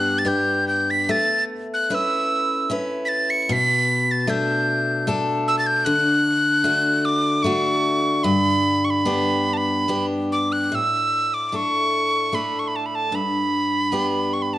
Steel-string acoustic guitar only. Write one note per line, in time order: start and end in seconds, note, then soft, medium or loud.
0.00 1.08 G2 medium
0.00 0.24 B3 soft
0.00 0.24 D4 soft
0.00 0.25 G4 soft
0.25 1.90 B3 soft
0.25 1.16 D4 soft
0.25 1.17 G4 soft
1.09 3.52 A3 medium
1.90 2.68 C#4 soft
1.90 2.69 E4 soft
1.90 2.71 B4 soft
2.70 3.56 C#4 soft
2.70 3.56 E4 soft
2.70 4.29 B4 medium
3.49 5.84 B2 medium
4.27 5.07 A3 medium
4.27 5.07 D4 medium
4.27 5.08 A4 medium
5.07 6.64 A3 medium
5.07 6.64 D4 medium
5.07 6.65 A4 medium
5.86 9.36 D3 medium
6.64 7.43 A3 medium
6.64 7.45 D4 soft
6.64 7.44 F#4 medium
7.44 8.32 A3 medium
7.44 9.05 D4 medium
7.44 8.33 F#4 medium
8.24 10.71 G2 medium
9.05 9.87 B3 soft
9.05 9.88 D4 medium
9.05 9.88 G4 soft
9.88 10.80 B3 soft
9.88 11.53 D4 soft
9.88 10.80 G4 medium
10.72 13.12 A2 soft
11.52 12.31 A3 soft
11.52 12.33 D4 soft
11.52 12.33 A4 soft
12.32 13.20 A3 soft
12.32 13.92 D4 soft
12.32 13.21 A4 soft
13.12 14.58 G2 medium
13.92 14.58 B3 soft
13.92 14.58 D4 soft
13.92 14.58 G4 soft